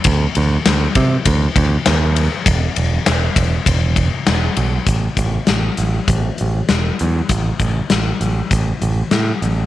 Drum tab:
RD |xxxxxxxx|xxxxxxxx|--------|--------|
HH |--------|--------|xxxxxxxx|xxxxxxxx|
SD |--o---o-|--o---o-|--o---o-|--o---o-|
BD |o--ooo--|o--ooo--|oo--o---|oo--o---|